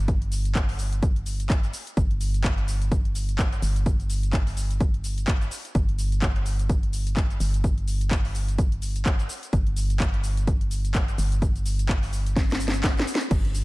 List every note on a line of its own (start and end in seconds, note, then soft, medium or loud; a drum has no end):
0.00 1.71 G1 medium
0.08 kick loud
0.08 closed hi-hat medium
0.08 shaker soft
0.22 closed hi-hat soft
0.32 open hi-hat loud
0.32 shaker medium
0.45 closed hi-hat medium
0.45 shaker soft
0.55 kick loud
0.55 clap loud
0.55 closed hi-hat medium
0.55 shaker soft
0.69 open hi-hat medium
0.79 open hi-hat loud
0.79 shaker medium
0.93 closed hi-hat medium
0.93 shaker soft
1.03 kick loud
1.03 closed hi-hat medium
1.03 shaker soft
1.16 closed hi-hat soft
1.26 open hi-hat loud
1.26 shaker medium
1.40 closed hi-hat medium
1.40 shaker soft
1.50 kick loud
1.50 clap loud
1.50 closed hi-hat medium
1.50 shaker soft
1.63 closed hi-hat soft
1.63 shaker soft
1.73 open hi-hat loud
1.73 shaker medium
1.87 closed hi-hat soft
1.87 shaker soft
1.97 3.60 G1 medium
1.97 kick loud
1.97 closed hi-hat medium
1.97 shaker soft
2.11 closed hi-hat soft
2.21 open hi-hat loud
2.21 shaker medium
2.34 closed hi-hat soft
2.34 shaker soft
2.44 kick loud
2.44 clap loud
2.44 closed hi-hat medium
2.44 shaker soft
2.58 closed hi-hat soft
2.68 open hi-hat loud
2.68 shaker medium
2.82 closed hi-hat medium
2.82 shaker soft
2.92 kick loud
2.92 closed hi-hat medium
2.92 shaker soft
3.05 closed hi-hat soft
3.15 open hi-hat loud
3.15 shaker medium
3.29 closed hi-hat medium
3.29 shaker soft
3.39 kick loud
3.39 clap loud
3.39 closed hi-hat medium
3.39 shaker soft
3.52 closed hi-hat soft
3.52 shaker soft
3.62 5.49 G1 medium
3.62 open hi-hat loud
3.62 shaker medium
3.76 closed hi-hat soft
3.76 shaker soft
3.86 kick loud
3.86 closed hi-hat medium
3.86 shaker soft
4.00 closed hi-hat soft
4.00 shaker soft
4.10 open hi-hat loud
4.10 shaker medium
4.23 closed hi-hat soft
4.23 shaker soft
4.33 kick loud
4.33 clap loud
4.33 closed hi-hat soft
4.33 shaker soft
4.47 open hi-hat medium
4.47 shaker soft
4.57 open hi-hat loud
4.57 shaker medium
4.71 closed hi-hat medium
4.71 shaker soft
4.80 kick loud
4.80 closed hi-hat medium
4.80 shaker soft
4.94 closed hi-hat soft
5.04 open hi-hat loud
5.04 shaker medium
5.18 closed hi-hat medium
5.18 shaker soft
5.28 kick loud
5.28 clap loud
5.28 closed hi-hat medium
5.28 shaker soft
5.41 closed hi-hat soft
5.41 shaker soft
5.51 open hi-hat loud
5.51 shaker medium
5.65 closed hi-hat soft
5.65 shaker soft
5.75 7.38 G1 medium
5.75 kick loud
5.75 closed hi-hat medium
5.75 shaker soft
5.89 closed hi-hat soft
5.99 open hi-hat loud
5.99 shaker medium
6.12 closed hi-hat soft
6.12 shaker soft
6.22 kick loud
6.22 clap loud
6.22 closed hi-hat soft
6.22 shaker soft
6.36 closed hi-hat soft
6.46 open hi-hat loud
6.46 shaker medium
6.59 closed hi-hat medium
6.59 shaker soft
6.69 kick loud
6.69 closed hi-hat medium
6.69 shaker soft
6.83 closed hi-hat soft
6.93 open hi-hat loud
6.93 shaker medium
7.07 closed hi-hat medium
7.07 shaker soft
7.17 kick loud
7.17 clap loud
7.17 closed hi-hat medium
7.17 shaker soft
7.30 closed hi-hat soft
7.30 shaker soft
7.40 9.27 G1 medium
7.40 open hi-hat loud
7.40 shaker medium
7.54 closed hi-hat soft
7.54 shaker soft
7.64 kick loud
7.64 closed hi-hat medium
7.64 shaker soft
7.78 closed hi-hat soft
7.88 open hi-hat loud
7.88 shaker medium
8.01 closed hi-hat medium
8.01 shaker soft
8.11 kick loud
8.11 clap loud
8.11 closed hi-hat medium
8.11 shaker soft
8.25 open hi-hat medium
8.35 open hi-hat medium
8.35 shaker medium
8.48 closed hi-hat soft
8.48 shaker soft
8.58 kick loud
8.58 closed hi-hat medium
8.58 shaker soft
8.72 closed hi-hat soft
8.82 open hi-hat loud
8.82 shaker medium
8.96 closed hi-hat medium
8.96 shaker soft
9.06 kick loud
9.06 clap loud
9.06 closed hi-hat medium
9.06 shaker medium
9.19 closed hi-hat soft
9.19 shaker soft
9.29 open hi-hat loud
9.29 shaker medium
9.43 closed hi-hat soft
9.43 shaker soft
9.53 11.16 G1 loud
9.53 kick loud
9.53 closed hi-hat medium
9.53 shaker soft
9.67 closed hi-hat soft
9.76 open hi-hat loud
9.76 shaker medium
9.90 closed hi-hat medium
9.90 shaker soft
10.00 kick loud
10.00 clap loud
10.00 closed hi-hat medium
10.00 shaker soft
10.14 closed hi-hat soft
10.24 open hi-hat loud
10.24 shaker medium
10.37 closed hi-hat medium
10.37 shaker soft
10.47 kick loud
10.47 closed hi-hat medium
10.47 shaker soft
10.61 closed hi-hat soft
10.71 open hi-hat loud
10.71 shaker medium
10.85 closed hi-hat medium
10.85 shaker soft
10.95 kick loud
10.95 clap loud
10.95 closed hi-hat medium
10.95 shaker medium
11.08 closed hi-hat soft
11.08 shaker soft
11.18 13.05 G1 medium
11.18 open hi-hat loud
11.18 shaker medium
11.32 closed hi-hat medium
11.32 shaker soft
11.42 kick loud
11.42 closed hi-hat medium
11.42 shaker soft
11.56 closed hi-hat soft
11.56 shaker soft
11.66 open hi-hat loud
11.66 shaker medium
11.79 closed hi-hat medium
11.79 shaker soft
11.89 kick loud
11.89 clap loud
11.89 closed hi-hat medium
11.89 shaker soft
12.03 open hi-hat medium
12.03 shaker soft
12.13 open hi-hat loud
12.13 shaker medium
12.26 closed hi-hat medium
12.26 shaker soft
12.36 kick loud
12.36 snare medium
12.36 closed hi-hat medium
12.36 shaker soft
12.50 snare medium
12.50 closed hi-hat soft
12.50 shaker soft
12.60 open hi-hat loud
12.60 shaker medium
12.68 snare medium
12.74 closed hi-hat medium
12.74 shaker soft
12.84 kick loud
12.84 snare loud
12.84 clap loud
12.84 closed hi-hat medium
12.84 shaker soft
12.97 snare medium
12.97 closed hi-hat soft
12.97 shaker soft
13.07 open hi-hat loud
13.07 shaker medium
13.15 snare loud
13.21 closed hi-hat medium
13.21 shaker soft
13.31 13.64 G1 medium
13.31 kick loud
13.31 closed hi-hat medium
13.31 crash medium
13.31 shaker soft
13.45 closed hi-hat soft
13.55 open hi-hat loud
13.55 shaker medium